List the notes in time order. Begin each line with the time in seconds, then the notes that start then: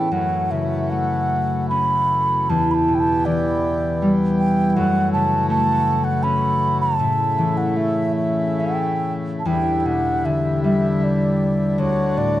Already playing: A2 E3 C#4 E4 G5
0.11 F#2 E3 A3 F#4 F#5
0.51 C#3 E5
0.90 A3 F#5
1.69 C#4 B5
2.49 E2 B3 G4 A5
2.71 A5 B5
2.88 B2
2.95 G5
3.00 A5
3.25 E3 D5
4.02 G3
4.38 G5
4.70 G5
4.75 F#2 A3 F#4 F#5
5.13 C#3 A5
5.50 A3 A5
6.04 F#5
6.23 C#4 B5
6.81 A5
6.99 A2 C#3 E4
7.38 E3
7.57 F#5
7.70 F#5
7.76 A3 E5
8.16 E5
8.60 C#4 G5
9.39 A5
9.45 E2 D3 G3 E4 G5
9.80 G5
9.86 B2 F#5
10.25 D3 E5
10.64 G3 E5
10.97 E5
11.04 D5
11.78 D2 D4 F#4 C#5
12.17 A2 D5